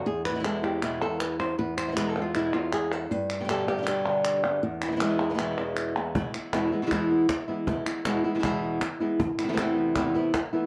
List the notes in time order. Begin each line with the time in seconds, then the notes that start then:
0.06 E2 G#4, muted nylon-string guitar stroke
0.25 B4, clap
0.30 B2 E3 G#3 B3 E4
0.35 B2 E3 G#3 B3 E4
0.39 B2 E3 G#3 B3 E4
0.44 E2 B2 E3 G#3 B3 E4 A4, clap
0.63 E3 G#3 B3 E4 G4, clap
0.82 E2 B2 E3 G#3 B3 E4 G#4, clap
1.01 E2 E3 G#3 B3 E4 A4
1.20 B4, muted nylon-string guitar stroke, clap
1.40 C5, clap
1.59 E2 B4, muted nylon-string guitar stroke
1.77 C5, clap
1.88 B2 E3 G#3 B3 E4
1.92 B2 E3 G#3 B3 E4
1.97 E2 B2 E3 G#3 B3 E4 B4, clap
2.09 A4
2.16 E3 G#3 B3 E4, clap
2.22 F4
2.35 E2 B2 E3 G#3 B3 E4, clap
2.53 E2 E3 G#3 B3 E4 F4, clap
2.73 G#4, muted nylon-string guitar stroke, clap
2.92 A4, clap
3.11 G2 B4, muted nylon-string guitar stroke
3.30 clap
3.40 B2 D3 G3 B3 G4
3.44 B2 D3 G3 B3 G4
3.49 G2 B2 D3 G3 B3 G4 A4, clap
3.67 D3 G3 B3 G4, clap
3.78 B2 D3 G3 B3 G4
3.82 B2 D3 G3 B3 G4
3.87 G2 B2 D3 G3 B3 D4 G4, clap
4.06 D3, clap
4.25 clap
4.43 D3 G3 B3 G4, clap
4.63 E2, muted nylon-string guitar stroke
4.82 E4, clap
4.87 B2 E3 G#3 B3 E4
4.92 B2 E3 G#3 B3 E4
4.96 B2 E3 G#3 B3 E4
5.00 E2 B2 E3 G#3 B3 E4, clap
5.19 E3 G#3 B3 E4 G#4, clap
5.30 B2 E3 G#3 B3 E4
5.34 B2 E3 G#3 B3 E4
5.39 E2 B2 E3 G#3 B3 E4, clap
5.58 E2, clap
5.77 clap
5.96 E3 G#3 B3 E4
6.15 E2 B2 E3 G#3 B3 E4, muted nylon-string guitar stroke, cajon bass
6.34 E3 G#3 B3 E4, clap
6.53 E2 B2 E3 G#3 B3 E4, cajon slap, clap
6.72 E3 G#3 B3 E4
6.82 B2 E3 G#3 B3 E4
6.86 B2 E3 G#3 B3 E4
6.91 E2 B2 E3 G#3 B3 E4, muted nylon-string guitar stroke, cajon bass, cajon slap, clap
7.10 E3 G#3 B3 E4
7.28 muted nylon-string guitar stroke, cajon bass, cajon slap, clap
7.48 E3 G#3 B3 E4
7.67 E2 B2 E3 G#3 B3 E4, muted nylon-string guitar stroke, cajon bass
7.86 E3 G#3 B3 E4, clap
8.05 E2 B2 E3 G#3 B3 E4, cajon slap, clap
8.24 E3 G#3 B3 E4, cajon slap
8.35 B2 E3 G#3 B3 E4
8.39 B2 E3 G#3 B3 E4
8.43 E2 B2 E3 G#3 B3 E4, muted nylon-string guitar stroke, cajon bass, clap
8.62 E3 G#3 B3 E4
8.81 muted nylon-string guitar stroke, cajon slap, clap
9.00 E3 G#3 B3 E4
9.20 muted nylon-string guitar stroke, cajon bass
9.38 E3 A3 B3 E4, cajon slap, clap
9.44 C3 E3 A3 B3 E4
9.48 C3 E3 A3 B3 E4
9.53 C3 E3 A3 B3 E4
9.57 E2 C3 E3 A3 B3 E4, cajon slap, clap
9.76 E3 A3 B3 E4, cajon slap
9.95 E2 C3 E3 A3 B3 E4, cajon bass, clap
10.14 E2 C3 E3 A3 B3 E4
10.34 muted nylon-string guitar stroke, cajon bass, cajon slap, clap
10.53 E3 A3 B3 E4